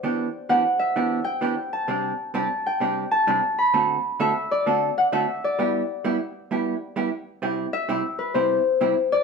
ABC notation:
X:1
M:4/4
L:1/8
Q:"Swing" 1/4=130
K:Clyd
V:1 name="Harp"
z2 f e2 g2 a | z2 a g2 a2 b | z2 e d2 f e d- | d6 z2 |
z e2 B c2 z d |]
V:2 name="Hollow-body jazz guitar"
[E,B,DG] z [E,B,DG] z [E,B,DG] z [E,B,DG] z | [C,G,CDG] z [C,G,CDG] z [C,G,CDG] z [C,G,CDG] z | [D,A,CFA] z [D,A,CFA] z [D,A,CFA] z [D,A,CFA] z | [G,B,EG] z [G,B,EG] z [G,B,EG] z [G,B,EG] z |
[C,G,CEG] z [C,G,CEG] z [C,G,CEG] z [C,G,CEG] z |]